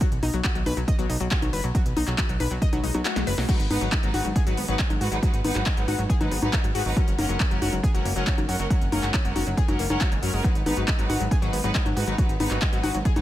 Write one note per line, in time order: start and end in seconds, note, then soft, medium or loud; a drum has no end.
0.01 0.08 F#3 loud
0.01 kick loud
0.01 closed hi-hat medium
0.12 0.19 B1 medium
0.12 closed hi-hat medium
0.23 0.30 B1 loud
0.23 0.29 D#4 medium
0.23 open hi-hat loud
0.23 high conga medium
0.34 0.41 B1 medium
0.34 0.40 F#3 medium
0.34 closed hi-hat medium
0.44 0.51 F#4 medium
0.44 kick loud
0.44 clap loud
0.44 closed hi-hat medium
0.55 0.63 B1 medium
0.55 0.62 F#3 medium
0.55 closed hi-hat medium
0.66 0.74 B1 loud
0.66 0.73 B4 loud
0.66 open hi-hat loud
0.66 high conga medium
0.77 0.85 B1 medium
0.77 0.81 F#3 medium
0.77 closed hi-hat medium
0.88 0.95 D#5 loud
0.88 kick loud
0.88 closed hi-hat medium
0.99 1.06 B1 medium
0.99 1.05 F#3 loud
0.99 closed hi-hat medium
1.09 1.17 B1 medium
1.09 1.16 D#4 medium
1.09 open hi-hat loud
1.20 1.28 B1 medium
1.20 1.31 F#3 medium
1.20 closed hi-hat medium
1.31 1.38 F#4 medium
1.31 kick loud
1.31 clap loud
1.31 closed hi-hat medium
1.42 1.50 B1 medium
1.42 1.49 F#3 medium
1.42 closed hi-hat medium
1.42 high conga medium
1.53 1.61 F#1 medium
1.53 1.60 B4 loud
1.53 open hi-hat medium
1.64 1.72 B1 medium
1.64 1.68 F#3 medium
1.64 closed hi-hat medium
1.75 1.82 F#3 loud
1.75 kick loud
1.75 closed hi-hat medium
1.86 1.93 B1 medium
1.86 closed hi-hat medium
1.97 2.04 B1 loud
1.97 2.03 D#4 medium
1.97 open hi-hat loud
1.97 high conga medium
2.07 2.15 B1 medium
2.07 2.14 F#3 medium
2.07 clap soft
2.07 closed hi-hat medium
2.18 2.25 F#4 medium
2.18 kick loud
2.18 clap loud
2.18 closed hi-hat medium
2.29 2.37 B1 medium
2.29 2.36 F#3 medium
2.29 closed hi-hat medium
2.40 2.48 B1 loud
2.40 2.47 B4 loud
2.40 open hi-hat loud
2.40 high conga medium
2.51 2.59 B1 medium
2.51 2.55 F#3 medium
2.51 closed hi-hat medium
2.62 2.69 D#5 loud
2.62 kick loud
2.62 closed hi-hat medium
2.62 swell medium
2.73 2.80 B1 medium
2.73 2.79 F#3 loud
2.73 closed hi-hat medium
2.73 high conga medium
2.83 2.91 B1 medium
2.83 2.90 D#4 medium
2.83 open hi-hat loud
2.94 3.02 B1 medium
2.94 3.05 F#3 medium
2.94 closed hi-hat medium
2.94 high conga medium
3.05 3.12 F#4 medium
3.05 snare medium
3.05 clap loud
3.05 closed hi-hat medium
3.16 3.24 B1 medium
3.16 3.23 F#3 medium
3.16 snare medium
3.16 closed hi-hat medium
3.27 3.35 F#1 loud
3.27 3.34 B4 loud
3.27 open hi-hat loud
3.38 3.46 B1 medium
3.38 3.42 F#3 medium
3.38 snare medium
3.38 open hi-hat medium
3.49 3.56 F#3 loud
3.49 3.64 G#3 medium
3.49 3.64 D#4 medium
3.49 3.64 B4 medium
3.49 3.64 F#5 medium
3.49 kick loud
3.49 closed hi-hat medium
3.49 crash medium
3.60 3.67 G#1 medium
3.60 closed hi-hat medium
3.70 3.78 G#1 loud
3.70 3.86 G#3 medium
3.70 3.77 B3 medium
3.70 3.86 D#4 medium
3.70 3.86 B4 medium
3.70 3.86 F#5 medium
3.70 open hi-hat loud
3.70 high conga medium
3.81 3.89 G#1 medium
3.81 3.88 F#3 medium
3.81 closed hi-hat medium
3.92 3.99 D#4 medium
3.92 kick loud
3.92 clap loud
3.92 closed hi-hat medium
4.03 4.11 G#1 medium
4.03 4.10 F#3 medium
4.03 4.19 G#3 medium
4.03 4.18 D#4 medium
4.03 4.19 B4 medium
4.03 4.19 F#5 medium
4.03 closed hi-hat medium
4.14 4.22 G#1 loud
4.14 4.21 F#4 loud
4.14 open hi-hat loud
4.14 high conga medium
4.25 4.33 G#1 medium
4.25 4.29 F#3 medium
4.25 closed hi-hat medium
4.36 4.42 G#4 loud
4.36 kick loud
4.36 closed hi-hat medium
4.47 4.54 G#1 medium
4.47 4.53 F#3 loud
4.47 4.62 G#3 medium
4.47 4.62 D#4 medium
4.47 4.62 B4 medium
4.47 4.62 F#5 medium
4.47 closed hi-hat medium
4.57 4.65 G#1 medium
4.57 4.64 B3 medium
4.57 open hi-hat loud
4.68 4.76 G#1 medium
4.68 4.78 F#3 medium
4.68 4.84 G#3 medium
4.68 4.84 D#4 medium
4.68 4.84 B4 medium
4.68 4.84 F#5 medium
4.68 closed hi-hat medium
4.79 4.86 D#4 medium
4.79 kick loud
4.79 clap loud
4.79 closed hi-hat medium
4.90 4.98 G#1 medium
4.90 4.97 F#3 medium
4.90 closed hi-hat medium
4.90 high conga medium
5.01 5.08 G#2 loud
5.01 5.09 G#3 medium
5.01 5.09 D#4 medium
5.01 5.08 F#4 loud
5.01 5.08 B4 medium
5.01 5.09 F#5 medium
5.01 open hi-hat loud
5.12 5.19 G#1 medium
5.12 5.16 F#3 medium
5.12 5.19 G#3 medium
5.12 5.19 D#4 medium
5.12 5.19 B4 medium
5.12 5.19 F#5 medium
5.12 closed hi-hat medium
5.23 5.29 F#3 loud
5.23 5.38 G#3 medium
5.23 5.38 D#4 medium
5.23 5.38 B4 medium
5.23 5.38 F#5 medium
5.23 kick loud
5.23 closed hi-hat medium
5.34 5.41 G#1 medium
5.34 closed hi-hat soft
5.44 5.52 G#1 loud
5.44 5.60 G#3 medium
5.44 5.51 B3 medium
5.44 5.60 D#4 medium
5.44 5.60 B4 medium
5.44 5.60 F#5 medium
5.44 open hi-hat loud
5.44 high conga medium
5.55 5.63 G#1 medium
5.55 5.62 F#3 medium
5.55 clap soft
5.55 closed hi-hat medium
5.66 5.73 D#4 medium
5.66 kick loud
5.66 clap loud
5.66 closed hi-hat medium
5.77 5.85 G#1 medium
5.77 5.84 F#3 medium
5.77 5.92 G#3 medium
5.77 5.92 D#4 medium
5.77 5.92 B4 medium
5.77 5.92 F#5 medium
5.77 closed hi-hat medium
5.88 5.95 G#1 loud
5.88 5.95 F#4 loud
5.88 open hi-hat loud
5.88 high conga medium
5.99 6.06 G#1 medium
5.99 6.03 F#3 medium
5.99 closed hi-hat medium
6.10 6.16 G#4 loud
6.10 kick loud
6.10 closed hi-hat medium
6.20 6.28 G#1 medium
6.20 6.27 F#3 loud
6.20 6.36 G#3 medium
6.20 6.36 D#4 medium
6.20 6.36 B4 medium
6.20 6.36 F#5 medium
6.20 closed hi-hat medium
6.20 high conga medium
6.31 6.39 G#1 medium
6.31 6.38 B3 medium
6.31 open hi-hat loud
6.42 6.50 G#1 medium
6.42 6.52 F#3 medium
6.42 6.58 G#3 medium
6.42 6.58 D#4 medium
6.42 6.58 B4 medium
6.42 6.58 F#5 medium
6.42 closed hi-hat medium
6.42 high conga medium
6.53 6.60 D#4 medium
6.53 kick loud
6.53 clap loud
6.53 closed hi-hat medium
6.64 6.72 G#1 medium
6.64 6.71 F#3 medium
6.64 closed hi-hat medium
6.75 6.82 G#2 loud
6.75 6.83 G#3 medium
6.75 6.83 D#4 medium
6.75 6.82 F#4 loud
6.75 6.83 B4 medium
6.75 6.83 F#5 medium
6.75 open hi-hat loud
6.86 6.93 G#1 medium
6.86 6.90 F#3 medium
6.86 6.94 G#3 medium
6.86 6.94 D#4 medium
6.86 6.93 B4 medium
6.86 6.94 F#5 medium
6.86 open hi-hat medium
6.97 7.03 F#3 loud
6.97 7.12 G#3 medium
6.97 7.12 C#4 medium
6.97 7.12 A#4 medium
6.97 7.12 F#5 medium
6.97 kick loud
6.97 closed hi-hat medium
7.08 7.15 F#1 medium
7.08 closed hi-hat soft
7.18 7.26 F#1 loud
7.18 7.34 G#3 medium
7.18 7.25 A#3 medium
7.18 7.34 C#4 medium
7.18 7.34 A#4 medium
7.18 7.34 F#5 medium
7.18 open hi-hat loud
7.18 high conga medium
7.29 7.37 F#1 medium
7.29 7.36 F#3 medium
7.29 closed hi-hat soft
7.40 7.47 C#4 medium
7.40 kick loud
7.40 clap loud
7.40 closed hi-hat medium
7.51 7.59 F#1 medium
7.51 7.58 F#3 medium
7.51 7.66 G#3 medium
7.51 7.66 C#4 medium
7.51 7.66 A#4 medium
7.51 7.66 F#5 medium
7.51 closed hi-hat soft
7.62 7.69 F#1 loud
7.62 7.69 F#4 loud
7.62 open hi-hat loud
7.62 high conga medium
7.73 7.80 F#1 medium
7.73 7.77 F#3 medium
7.73 closed hi-hat medium
7.83 7.90 G#4 loud
7.83 kick loud
7.83 closed hi-hat medium
7.94 8.02 F#1 medium
7.94 8.01 F#3 loud
7.94 8.10 G#3 medium
7.94 8.09 C#4 medium
7.94 8.10 A#4 medium
7.94 8.10 F#5 medium
7.94 closed hi-hat medium
8.05 8.13 F#1 medium
8.05 8.12 A#3 medium
8.05 open hi-hat loud
8.16 8.24 F#1 medium
8.16 8.26 F#3 medium
8.16 8.31 G#3 medium
8.16 8.31 C#4 medium
8.16 8.31 A#4 medium
8.16 8.31 F#5 medium
8.16 closed hi-hat soft
8.27 8.34 C#4 medium
8.27 kick loud
8.27 clap loud
8.27 closed hi-hat medium
8.38 8.46 F#1 medium
8.38 8.45 F#3 medium
8.38 closed hi-hat medium
8.38 high conga medium
8.49 8.56 F#2 loud
8.49 8.56 G#3 medium
8.49 8.56 C#4 medium
8.49 8.55 F#4 loud
8.49 8.56 A#4 medium
8.49 8.56 F#5 medium
8.49 open hi-hat loud
8.60 8.67 F#1 medium
8.60 8.64 F#3 medium
8.60 8.67 G#3 medium
8.60 8.67 C#4 medium
8.60 8.67 A#4 medium
8.60 8.67 F#5 medium
8.60 closed hi-hat soft
8.70 8.77 F#3 loud
8.70 8.86 G#3 medium
8.70 8.86 C#4 medium
8.70 8.86 A#4 medium
8.70 8.86 F#5 medium
8.70 kick loud
8.70 closed hi-hat medium
8.81 8.89 F#1 medium
8.81 closed hi-hat soft
8.92 9.00 F#1 loud
8.92 9.08 G#3 medium
8.92 8.99 A#3 medium
8.92 9.07 C#4 medium
8.92 9.07 A#4 medium
8.92 9.07 F#5 medium
8.92 open hi-hat loud
8.92 high conga medium
9.03 9.11 F#1 medium
9.03 9.10 F#3 medium
9.03 clap soft
9.03 closed hi-hat soft
9.14 9.21 C#4 medium
9.14 kick loud
9.14 clap loud
9.14 closed hi-hat medium
9.25 9.33 F#1 medium
9.25 9.32 F#3 medium
9.25 9.40 G#3 medium
9.25 9.40 C#4 medium
9.25 9.40 A#4 medium
9.25 9.40 F#5 medium
9.25 closed hi-hat soft
9.36 9.43 F#1 loud
9.36 9.42 F#4 medium
9.36 open hi-hat loud
9.36 high conga medium
9.47 9.54 F#1 medium
9.47 9.51 F#3 medium
9.47 closed hi-hat soft
9.57 9.64 G#4 loud
9.57 kick loud
9.57 closed hi-hat medium
9.68 9.76 F#1 medium
9.68 9.75 F#3 loud
9.68 9.84 G#3 medium
9.68 9.84 C#4 medium
9.68 9.84 A#4 medium
9.68 9.84 F#5 medium
9.68 closed hi-hat soft
9.68 high conga medium
9.79 9.87 F#1 medium
9.79 9.86 A#3 medium
9.79 open hi-hat loud
9.90 9.98 F#1 medium
9.90 10.05 G#3 medium
9.90 10.05 C#4 medium
9.90 10.00 C#4 medium
9.90 10.05 A#4 medium
9.90 10.05 F#5 medium
9.90 closed hi-hat soft
9.90 high conga medium
10.01 10.05 F#4 loud
10.01 kick loud
10.01 clap loud
10.01 closed hi-hat medium
10.12 10.19 F#1 medium
10.12 10.19 G#3 medium
10.12 closed hi-hat medium
10.22 10.30 F#2 loud
10.22 10.33 F#3 medium
10.22 10.30 G#3 medium
10.22 10.30 C#4 medium
10.22 10.30 A#4 medium
10.22 10.30 F#5 medium
10.22 open hi-hat loud
10.33 10.41 F#1 medium
10.33 10.41 G#3 medium
10.33 10.40 G#3 medium
10.33 10.41 C#4 medium
10.33 10.41 A#4 medium
10.33 10.41 F#5 medium
10.44 10.51 F#3 loud
10.44 10.60 G#3 medium
10.44 10.60 D#4 medium
10.44 10.60 B4 medium
10.44 10.60 F#5 medium
10.44 kick loud
10.44 closed hi-hat medium
10.55 10.63 G#1 medium
10.55 closed hi-hat soft
10.66 10.74 G#1 loud
10.66 10.81 G#3 medium
10.66 10.73 B3 medium
10.66 10.81 D#4 medium
10.66 10.81 B4 medium
10.66 10.81 F#5 medium
10.66 open hi-hat loud
10.66 high conga medium
10.77 10.85 G#1 medium
10.77 10.84 F#3 medium
10.77 closed hi-hat soft
10.88 10.95 D#4 medium
10.88 kick loud
10.88 clap loud
10.88 closed hi-hat medium
10.99 11.06 G#1 medium
10.99 11.05 F#3 medium
10.99 11.14 G#3 medium
10.99 11.14 D#4 medium
10.99 11.14 B4 medium
10.99 11.14 F#5 medium
10.99 closed hi-hat soft
11.10 11.17 G#1 loud
11.10 11.16 F#4 loud
11.10 open hi-hat loud
11.10 high conga medium
11.20 11.28 G#1 medium
11.20 11.24 F#3 medium
11.20 closed hi-hat medium
11.31 11.38 G#4 loud
11.31 kick loud
11.31 closed hi-hat medium
11.42 11.50 G#1 medium
11.42 11.49 F#3 loud
11.42 11.58 G#3 medium
11.42 11.58 D#4 medium
11.42 11.57 B4 medium
11.42 11.57 F#5 medium
11.42 closed hi-hat medium
11.53 11.61 G#1 medium
11.53 11.60 B3 medium
11.53 open hi-hat loud
11.64 11.72 G#1 medium
11.64 11.74 F#3 medium
11.64 11.79 G#3 medium
11.64 11.79 D#4 medium
11.64 11.79 B4 medium
11.64 11.79 F#5 medium
11.64 closed hi-hat soft
11.75 11.82 D#4 medium
11.75 kick loud
11.75 clap loud
11.75 closed hi-hat medium
11.85 11.93 G#1 medium
11.85 11.92 F#3 medium
11.85 closed hi-hat soft
11.85 high conga medium
11.96 12.04 G#2 loud
11.96 12.04 G#3 medium
11.96 12.04 D#4 medium
11.96 12.03 F#4 loud
11.96 12.04 B4 medium
11.96 12.04 F#5 medium
11.96 open hi-hat loud
12.07 12.15 G#1 medium
12.07 12.11 F#3 medium
12.07 12.15 G#3 medium
12.07 12.15 D#4 medium
12.07 12.15 B4 medium
12.07 12.15 F#5 medium
12.07 closed hi-hat soft
12.18 12.25 F#3 loud
12.18 12.34 G#3 medium
12.18 12.34 D#4 medium
12.18 12.34 B4 medium
12.18 12.34 F#5 medium
12.18 kick loud
12.18 closed hi-hat medium
12.29 12.37 G#1 medium
12.29 closed hi-hat soft
12.40 12.48 G#1 loud
12.40 12.55 G#3 medium
12.40 12.47 B3 medium
12.40 12.55 D#4 medium
12.40 12.55 B4 medium
12.40 12.55 F#5 medium
12.40 open hi-hat medium
12.40 high conga medium
12.51 12.59 G#1 medium
12.51 12.58 F#3 medium
12.51 clap soft
12.51 closed hi-hat soft
12.62 12.68 D#4 medium
12.62 kick loud
12.62 clap loud
12.62 closed hi-hat medium
12.72 12.80 G#1 medium
12.72 12.79 F#3 medium
12.72 12.88 G#3 medium
12.72 12.88 D#4 medium
12.72 12.88 B4 medium
12.72 12.88 F#5 medium
12.72 closed hi-hat soft
12.83 12.91 G#1 loud
12.83 12.90 F#4 loud
12.83 open hi-hat loud
12.83 high conga medium
12.94 13.02 G#1 medium
12.94 12.98 F#3 medium
12.94 closed hi-hat soft
13.05 13.12 G#4 loud
13.05 kick loud
13.05 closed hi-hat medium
13.16 13.21 G#1 medium
13.16 13.21 F#3 loud
13.16 13.21 G#3 medium
13.16 13.21 D#4 medium
13.16 13.21 B4 medium
13.16 13.21 F#5 medium
13.16 closed hi-hat medium
13.16 high conga medium